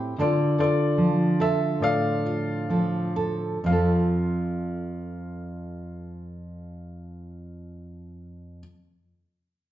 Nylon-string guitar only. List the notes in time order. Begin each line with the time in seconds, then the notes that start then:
Already playing: A2 C4 E4 G4
0.18 D3 A4
0.58 A4
0.98 F3
1.40 A4
1.80 A2
2.25 F4
2.69 F3 A4
3.16 A4
3.64 F2 F3
3.68 C4 F4 A4